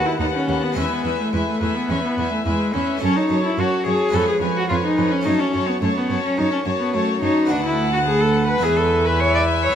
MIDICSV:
0, 0, Header, 1, 7, 480
1, 0, Start_track
1, 0, Tempo, 561798
1, 656, Time_signature, 4, 2, 24, 8
1, 8330, End_track
2, 0, Start_track
2, 0, Title_t, "Violin section"
2, 0, Program_c, 0, 48
2, 0, Note_on_c, 0, 81, 40
2, 159, Note_off_c, 0, 81, 0
2, 170, Note_on_c, 0, 81, 36
2, 408, Note_off_c, 0, 81, 0
2, 421, Note_on_c, 0, 81, 41
2, 654, Note_off_c, 0, 81, 0
2, 658, Note_on_c, 0, 80, 49
2, 889, Note_off_c, 0, 80, 0
2, 899, Note_on_c, 0, 80, 39
2, 1124, Note_off_c, 0, 80, 0
2, 1134, Note_on_c, 0, 80, 39
2, 1358, Note_off_c, 0, 80, 0
2, 1368, Note_on_c, 0, 80, 36
2, 1595, Note_off_c, 0, 80, 0
2, 1605, Note_on_c, 0, 80, 39
2, 1839, Note_off_c, 0, 80, 0
2, 1849, Note_on_c, 0, 80, 39
2, 2077, Note_off_c, 0, 80, 0
2, 2087, Note_on_c, 0, 80, 39
2, 2321, Note_off_c, 0, 80, 0
2, 2331, Note_on_c, 0, 80, 39
2, 2569, Note_on_c, 0, 81, 51
2, 2571, Note_off_c, 0, 80, 0
2, 2802, Note_off_c, 0, 81, 0
2, 2813, Note_on_c, 0, 81, 41
2, 3036, Note_off_c, 0, 81, 0
2, 3046, Note_on_c, 0, 81, 41
2, 3275, Note_off_c, 0, 81, 0
2, 3286, Note_on_c, 0, 81, 42
2, 3526, Note_off_c, 0, 81, 0
2, 3526, Note_on_c, 0, 80, 43
2, 3755, Note_off_c, 0, 80, 0
2, 3765, Note_on_c, 0, 80, 44
2, 4000, Note_off_c, 0, 80, 0
2, 4010, Note_on_c, 0, 80, 40
2, 4246, Note_off_c, 0, 80, 0
2, 4256, Note_on_c, 0, 80, 41
2, 4487, Note_on_c, 0, 81, 50
2, 4492, Note_off_c, 0, 80, 0
2, 4716, Note_off_c, 0, 81, 0
2, 4727, Note_on_c, 0, 81, 46
2, 4958, Note_off_c, 0, 81, 0
2, 4968, Note_on_c, 0, 81, 43
2, 5196, Note_off_c, 0, 81, 0
2, 5206, Note_on_c, 0, 81, 43
2, 5444, Note_off_c, 0, 81, 0
2, 5458, Note_on_c, 0, 81, 46
2, 5689, Note_off_c, 0, 81, 0
2, 5698, Note_on_c, 0, 81, 47
2, 5924, Note_off_c, 0, 81, 0
2, 5934, Note_on_c, 0, 81, 48
2, 6167, Note_off_c, 0, 81, 0
2, 6178, Note_on_c, 0, 81, 45
2, 6404, Note_off_c, 0, 81, 0
2, 6415, Note_on_c, 0, 81, 56
2, 7339, Note_off_c, 0, 81, 0
2, 7378, Note_on_c, 0, 80, 52
2, 8330, Note_off_c, 0, 80, 0
2, 8330, End_track
3, 0, Start_track
3, 0, Title_t, "Violin section"
3, 0, Program_c, 1, 48
3, 0, Note_on_c, 1, 78, 38
3, 162, Note_off_c, 1, 78, 0
3, 172, Note_on_c, 1, 78, 42
3, 407, Note_off_c, 1, 78, 0
3, 417, Note_on_c, 1, 78, 38
3, 652, Note_off_c, 1, 78, 0
3, 663, Note_on_c, 1, 76, 42
3, 892, Note_off_c, 1, 76, 0
3, 902, Note_on_c, 1, 76, 42
3, 1132, Note_off_c, 1, 76, 0
3, 1143, Note_on_c, 1, 76, 38
3, 1376, Note_off_c, 1, 76, 0
3, 1390, Note_on_c, 1, 76, 41
3, 1618, Note_off_c, 1, 76, 0
3, 1628, Note_on_c, 1, 76, 39
3, 1859, Note_off_c, 1, 76, 0
3, 1874, Note_on_c, 1, 76, 39
3, 2096, Note_off_c, 1, 76, 0
3, 2107, Note_on_c, 1, 76, 43
3, 2336, Note_off_c, 1, 76, 0
3, 2346, Note_on_c, 1, 76, 40
3, 2578, Note_off_c, 1, 76, 0
3, 2583, Note_on_c, 1, 73, 45
3, 2816, Note_off_c, 1, 73, 0
3, 2831, Note_on_c, 1, 73, 41
3, 3060, Note_off_c, 1, 73, 0
3, 3070, Note_on_c, 1, 73, 41
3, 3296, Note_off_c, 1, 73, 0
3, 3307, Note_on_c, 1, 73, 44
3, 3530, Note_off_c, 1, 73, 0
3, 3540, Note_on_c, 1, 73, 45
3, 3763, Note_off_c, 1, 73, 0
3, 3774, Note_on_c, 1, 73, 38
3, 3995, Note_off_c, 1, 73, 0
3, 4005, Note_on_c, 1, 73, 41
3, 4247, Note_off_c, 1, 73, 0
3, 4257, Note_on_c, 1, 73, 41
3, 4489, Note_off_c, 1, 73, 0
3, 4499, Note_on_c, 1, 73, 46
3, 4733, Note_off_c, 1, 73, 0
3, 4742, Note_on_c, 1, 73, 47
3, 4964, Note_off_c, 1, 73, 0
3, 4974, Note_on_c, 1, 73, 42
3, 5202, Note_off_c, 1, 73, 0
3, 5212, Note_on_c, 1, 73, 47
3, 5434, Note_off_c, 1, 73, 0
3, 5444, Note_on_c, 1, 73, 48
3, 5669, Note_off_c, 1, 73, 0
3, 5680, Note_on_c, 1, 73, 40
3, 5919, Note_off_c, 1, 73, 0
3, 5933, Note_on_c, 1, 73, 49
3, 6157, Note_off_c, 1, 73, 0
3, 6167, Note_on_c, 1, 73, 46
3, 6404, Note_off_c, 1, 73, 0
3, 6421, Note_on_c, 1, 78, 52
3, 7342, Note_off_c, 1, 78, 0
3, 7365, Note_on_c, 1, 76, 60
3, 8330, Note_off_c, 1, 76, 0
3, 8330, End_track
4, 0, Start_track
4, 0, Title_t, "Viola section"
4, 0, Program_c, 2, 48
4, 0, Note_on_c, 2, 71, 39
4, 166, Note_off_c, 2, 71, 0
4, 177, Note_on_c, 2, 71, 36
4, 408, Note_off_c, 2, 71, 0
4, 418, Note_on_c, 2, 71, 38
4, 653, Note_off_c, 2, 71, 0
4, 662, Note_on_c, 2, 71, 44
4, 890, Note_off_c, 2, 71, 0
4, 900, Note_on_c, 2, 71, 42
4, 1127, Note_off_c, 2, 71, 0
4, 1137, Note_on_c, 2, 71, 41
4, 1369, Note_off_c, 2, 71, 0
4, 1380, Note_on_c, 2, 71, 38
4, 1607, Note_off_c, 2, 71, 0
4, 1617, Note_on_c, 2, 71, 44
4, 1850, Note_off_c, 2, 71, 0
4, 1860, Note_on_c, 2, 71, 43
4, 2082, Note_off_c, 2, 71, 0
4, 2093, Note_on_c, 2, 71, 42
4, 2331, Note_off_c, 2, 71, 0
4, 2342, Note_on_c, 2, 71, 40
4, 2576, Note_off_c, 2, 71, 0
4, 2577, Note_on_c, 2, 73, 47
4, 2805, Note_off_c, 2, 73, 0
4, 2815, Note_on_c, 2, 73, 42
4, 3046, Note_off_c, 2, 73, 0
4, 3056, Note_on_c, 2, 73, 44
4, 3283, Note_off_c, 2, 73, 0
4, 3294, Note_on_c, 2, 73, 42
4, 3530, Note_off_c, 2, 73, 0
4, 3536, Note_on_c, 2, 71, 47
4, 3759, Note_off_c, 2, 71, 0
4, 3769, Note_on_c, 2, 71, 43
4, 3994, Note_off_c, 2, 71, 0
4, 4004, Note_on_c, 2, 71, 44
4, 4236, Note_off_c, 2, 71, 0
4, 4247, Note_on_c, 2, 71, 45
4, 4487, Note_off_c, 2, 71, 0
4, 4491, Note_on_c, 2, 73, 51
4, 4721, Note_off_c, 2, 73, 0
4, 4731, Note_on_c, 2, 73, 42
4, 4960, Note_off_c, 2, 73, 0
4, 4970, Note_on_c, 2, 73, 46
4, 5199, Note_off_c, 2, 73, 0
4, 5209, Note_on_c, 2, 73, 43
4, 5441, Note_off_c, 2, 73, 0
4, 5452, Note_on_c, 2, 73, 48
4, 5681, Note_off_c, 2, 73, 0
4, 5691, Note_on_c, 2, 73, 45
4, 5925, Note_off_c, 2, 73, 0
4, 5936, Note_on_c, 2, 73, 49
4, 6168, Note_off_c, 2, 73, 0
4, 6176, Note_on_c, 2, 73, 42
4, 6407, Note_on_c, 2, 71, 55
4, 6409, Note_off_c, 2, 73, 0
4, 8330, Note_off_c, 2, 71, 0
4, 8330, End_track
5, 0, Start_track
5, 0, Title_t, "Cello"
5, 0, Program_c, 3, 42
5, 50, Note_on_c, 3, 64, 55
5, 159, Note_off_c, 3, 64, 0
5, 164, Note_on_c, 3, 63, 55
5, 214, Note_off_c, 3, 63, 0
5, 289, Note_on_c, 3, 61, 57
5, 538, Note_on_c, 3, 59, 57
5, 551, Note_off_c, 3, 61, 0
5, 647, Note_on_c, 3, 61, 57
5, 660, Note_off_c, 3, 59, 0
5, 764, Note_off_c, 3, 61, 0
5, 769, Note_on_c, 3, 59, 52
5, 1009, Note_off_c, 3, 59, 0
5, 1016, Note_on_c, 3, 57, 47
5, 1129, Note_on_c, 3, 56, 55
5, 1142, Note_off_c, 3, 57, 0
5, 1249, Note_off_c, 3, 56, 0
5, 1254, Note_on_c, 3, 57, 58
5, 1502, Note_on_c, 3, 59, 54
5, 1515, Note_off_c, 3, 57, 0
5, 1622, Note_on_c, 3, 61, 62
5, 1635, Note_off_c, 3, 59, 0
5, 1740, Note_off_c, 3, 61, 0
5, 1746, Note_on_c, 3, 59, 56
5, 1973, Note_off_c, 3, 59, 0
5, 1979, Note_on_c, 3, 57, 49
5, 2027, Note_off_c, 3, 57, 0
5, 2105, Note_on_c, 3, 56, 52
5, 2336, Note_on_c, 3, 61, 63
5, 2349, Note_off_c, 3, 56, 0
5, 2578, Note_off_c, 3, 61, 0
5, 2585, Note_on_c, 3, 61, 68
5, 2700, Note_on_c, 3, 63, 61
5, 2713, Note_off_c, 3, 61, 0
5, 2939, Note_off_c, 3, 63, 0
5, 2945, Note_on_c, 3, 64, 54
5, 3073, Note_on_c, 3, 66, 63
5, 3085, Note_off_c, 3, 64, 0
5, 3296, Note_off_c, 3, 66, 0
5, 3301, Note_on_c, 3, 68, 69
5, 3540, Note_on_c, 3, 69, 66
5, 3553, Note_off_c, 3, 68, 0
5, 3648, Note_off_c, 3, 69, 0
5, 3653, Note_on_c, 3, 68, 60
5, 3722, Note_off_c, 3, 68, 0
5, 3905, Note_on_c, 3, 66, 59
5, 4001, Note_off_c, 3, 66, 0
5, 4006, Note_on_c, 3, 65, 61
5, 4057, Note_off_c, 3, 65, 0
5, 4133, Note_on_c, 3, 63, 62
5, 4370, Note_on_c, 3, 61, 63
5, 4383, Note_off_c, 3, 63, 0
5, 4486, Note_on_c, 3, 63, 69
5, 4498, Note_off_c, 3, 61, 0
5, 4610, Note_on_c, 3, 61, 63
5, 4623, Note_off_c, 3, 63, 0
5, 4855, Note_on_c, 3, 59, 55
5, 4868, Note_off_c, 3, 61, 0
5, 4968, Note_off_c, 3, 59, 0
5, 4973, Note_on_c, 3, 57, 61
5, 5021, Note_off_c, 3, 57, 0
5, 5096, Note_on_c, 3, 59, 60
5, 5327, Note_off_c, 3, 59, 0
5, 5332, Note_on_c, 3, 61, 65
5, 5450, Note_on_c, 3, 63, 74
5, 5463, Note_off_c, 3, 61, 0
5, 5565, Note_off_c, 3, 63, 0
5, 5570, Note_on_c, 3, 61, 60
5, 5638, Note_off_c, 3, 61, 0
5, 5809, Note_on_c, 3, 59, 55
5, 5929, Note_on_c, 3, 57, 61
5, 5942, Note_off_c, 3, 59, 0
5, 6158, Note_off_c, 3, 57, 0
5, 6163, Note_on_c, 3, 63, 76
5, 6413, Note_on_c, 3, 62, 68
5, 6426, Note_off_c, 3, 63, 0
5, 6532, Note_off_c, 3, 62, 0
5, 6541, Note_on_c, 3, 64, 70
5, 6772, Note_off_c, 3, 64, 0
5, 6778, Note_on_c, 3, 66, 61
5, 6825, Note_off_c, 3, 66, 0
5, 6890, Note_on_c, 3, 68, 69
5, 7011, Note_on_c, 3, 69, 67
5, 7024, Note_off_c, 3, 68, 0
5, 7241, Note_off_c, 3, 69, 0
5, 7246, Note_on_c, 3, 71, 72
5, 7372, Note_on_c, 3, 68, 73
5, 7385, Note_off_c, 3, 71, 0
5, 7489, Note_on_c, 3, 69, 67
5, 7502, Note_off_c, 3, 68, 0
5, 7738, Note_on_c, 3, 71, 66
5, 7750, Note_off_c, 3, 69, 0
5, 7860, Note_on_c, 3, 73, 77
5, 7873, Note_off_c, 3, 71, 0
5, 7975, Note_off_c, 3, 73, 0
5, 7985, Note_on_c, 3, 74, 71
5, 8053, Note_off_c, 3, 74, 0
5, 8228, Note_on_c, 3, 73, 77
5, 8330, Note_off_c, 3, 73, 0
5, 8330, End_track
6, 0, Start_track
6, 0, Title_t, "Harpsichord"
6, 0, Program_c, 4, 6
6, 0, Note_on_c, 4, 39, 41
6, 0, Note_on_c, 4, 57, 34
6, 0, Note_on_c, 4, 59, 35
6, 0, Note_on_c, 4, 66, 36
6, 154, Note_off_c, 4, 39, 0
6, 176, Note_on_c, 4, 39, 37
6, 392, Note_off_c, 4, 39, 0
6, 418, Note_on_c, 4, 39, 35
6, 610, Note_off_c, 4, 57, 0
6, 616, Note_off_c, 4, 59, 0
6, 616, Note_on_c, 4, 56, 29
6, 622, Note_off_c, 4, 66, 0
6, 630, Note_on_c, 4, 59, 33
6, 633, Note_off_c, 4, 39, 0
6, 642, Note_on_c, 4, 64, 33
6, 656, Note_on_c, 4, 40, 34
6, 873, Note_off_c, 4, 40, 0
6, 899, Note_on_c, 4, 40, 36
6, 1115, Note_off_c, 4, 40, 0
6, 1137, Note_on_c, 4, 40, 38
6, 1354, Note_off_c, 4, 40, 0
6, 1380, Note_on_c, 4, 40, 37
6, 1595, Note_off_c, 4, 40, 0
6, 1625, Note_on_c, 4, 40, 38
6, 1838, Note_off_c, 4, 40, 0
6, 1864, Note_on_c, 4, 40, 42
6, 2078, Note_off_c, 4, 40, 0
6, 2100, Note_on_c, 4, 40, 38
6, 2316, Note_off_c, 4, 40, 0
6, 2340, Note_on_c, 4, 40, 37
6, 2526, Note_off_c, 4, 56, 0
6, 2533, Note_off_c, 4, 59, 0
6, 2539, Note_off_c, 4, 64, 0
6, 2539, Note_on_c, 4, 57, 31
6, 2553, Note_on_c, 4, 61, 33
6, 2556, Note_off_c, 4, 40, 0
6, 2578, Note_on_c, 4, 42, 39
6, 2794, Note_off_c, 4, 42, 0
6, 2813, Note_on_c, 4, 42, 37
6, 3031, Note_off_c, 4, 42, 0
6, 3055, Note_on_c, 4, 42, 41
6, 3272, Note_off_c, 4, 42, 0
6, 3291, Note_on_c, 4, 42, 43
6, 3487, Note_off_c, 4, 57, 0
6, 3493, Note_on_c, 4, 56, 35
6, 3495, Note_off_c, 4, 61, 0
6, 3507, Note_on_c, 4, 59, 39
6, 3509, Note_off_c, 4, 42, 0
6, 3521, Note_on_c, 4, 61, 38
6, 3530, Note_on_c, 4, 41, 44
6, 3749, Note_off_c, 4, 41, 0
6, 3776, Note_on_c, 4, 41, 44
6, 3993, Note_off_c, 4, 41, 0
6, 4012, Note_on_c, 4, 41, 41
6, 4231, Note_off_c, 4, 41, 0
6, 4256, Note_on_c, 4, 41, 40
6, 4446, Note_off_c, 4, 56, 0
6, 4453, Note_off_c, 4, 59, 0
6, 4456, Note_on_c, 4, 57, 33
6, 4457, Note_off_c, 4, 61, 0
6, 4467, Note_on_c, 4, 61, 38
6, 4473, Note_off_c, 4, 41, 0
6, 4492, Note_on_c, 4, 42, 39
6, 4710, Note_off_c, 4, 42, 0
6, 4729, Note_on_c, 4, 42, 40
6, 4948, Note_off_c, 4, 42, 0
6, 4975, Note_on_c, 4, 42, 42
6, 5191, Note_off_c, 4, 42, 0
6, 5216, Note_on_c, 4, 42, 45
6, 5430, Note_off_c, 4, 42, 0
6, 5448, Note_on_c, 4, 42, 40
6, 5665, Note_off_c, 4, 42, 0
6, 5687, Note_on_c, 4, 42, 45
6, 5904, Note_off_c, 4, 42, 0
6, 5926, Note_on_c, 4, 42, 44
6, 6144, Note_off_c, 4, 42, 0
6, 6167, Note_on_c, 4, 42, 39
6, 6355, Note_off_c, 4, 57, 0
6, 6361, Note_off_c, 4, 61, 0
6, 6369, Note_on_c, 4, 57, 37
6, 6381, Note_on_c, 4, 59, 37
6, 6385, Note_off_c, 4, 42, 0
6, 6397, Note_on_c, 4, 66, 36
6, 6409, Note_on_c, 4, 38, 42
6, 7320, Note_off_c, 4, 57, 0
6, 7327, Note_off_c, 4, 59, 0
6, 7330, Note_on_c, 4, 56, 43
6, 7335, Note_off_c, 4, 66, 0
6, 7336, Note_off_c, 4, 38, 0
6, 7344, Note_on_c, 4, 59, 39
6, 7358, Note_on_c, 4, 64, 43
6, 7369, Note_on_c, 4, 40, 48
6, 8281, Note_off_c, 4, 56, 0
6, 8283, Note_off_c, 4, 59, 0
6, 8293, Note_on_c, 4, 59, 38
6, 8295, Note_off_c, 4, 64, 0
6, 8296, Note_off_c, 4, 40, 0
6, 8330, Note_off_c, 4, 59, 0
6, 8330, End_track
7, 0, Start_track
7, 0, Title_t, "Cello section"
7, 0, Program_c, 5, 48
7, 169, Note_on_c, 5, 39, 45
7, 237, Note_off_c, 5, 39, 0
7, 412, Note_on_c, 5, 39, 41
7, 480, Note_off_c, 5, 39, 0
7, 656, Note_on_c, 5, 40, 49
7, 724, Note_off_c, 5, 40, 0
7, 896, Note_on_c, 5, 40, 43
7, 965, Note_off_c, 5, 40, 0
7, 1138, Note_on_c, 5, 40, 44
7, 1207, Note_off_c, 5, 40, 0
7, 1381, Note_on_c, 5, 40, 48
7, 1449, Note_off_c, 5, 40, 0
7, 1618, Note_on_c, 5, 40, 49
7, 1686, Note_off_c, 5, 40, 0
7, 1866, Note_on_c, 5, 40, 41
7, 1934, Note_off_c, 5, 40, 0
7, 2097, Note_on_c, 5, 40, 46
7, 2166, Note_off_c, 5, 40, 0
7, 2345, Note_on_c, 5, 40, 40
7, 2414, Note_off_c, 5, 40, 0
7, 2585, Note_on_c, 5, 42, 54
7, 2654, Note_off_c, 5, 42, 0
7, 2819, Note_on_c, 5, 42, 46
7, 2887, Note_off_c, 5, 42, 0
7, 3056, Note_on_c, 5, 42, 46
7, 3125, Note_off_c, 5, 42, 0
7, 3296, Note_on_c, 5, 42, 52
7, 3364, Note_off_c, 5, 42, 0
7, 3534, Note_on_c, 5, 41, 50
7, 3603, Note_off_c, 5, 41, 0
7, 3771, Note_on_c, 5, 41, 48
7, 3840, Note_off_c, 5, 41, 0
7, 4017, Note_on_c, 5, 41, 50
7, 4086, Note_off_c, 5, 41, 0
7, 4250, Note_on_c, 5, 41, 47
7, 4319, Note_off_c, 5, 41, 0
7, 4492, Note_on_c, 5, 42, 49
7, 4560, Note_off_c, 5, 42, 0
7, 4733, Note_on_c, 5, 42, 52
7, 4802, Note_off_c, 5, 42, 0
7, 4970, Note_on_c, 5, 42, 54
7, 5039, Note_off_c, 5, 42, 0
7, 5208, Note_on_c, 5, 42, 50
7, 5276, Note_off_c, 5, 42, 0
7, 5453, Note_on_c, 5, 42, 54
7, 5521, Note_off_c, 5, 42, 0
7, 5683, Note_on_c, 5, 42, 50
7, 5752, Note_off_c, 5, 42, 0
7, 5930, Note_on_c, 5, 42, 47
7, 5998, Note_off_c, 5, 42, 0
7, 6165, Note_on_c, 5, 42, 48
7, 6233, Note_off_c, 5, 42, 0
7, 6404, Note_on_c, 5, 38, 53
7, 7334, Note_off_c, 5, 38, 0
7, 7369, Note_on_c, 5, 40, 55
7, 8330, Note_off_c, 5, 40, 0
7, 8330, End_track
0, 0, End_of_file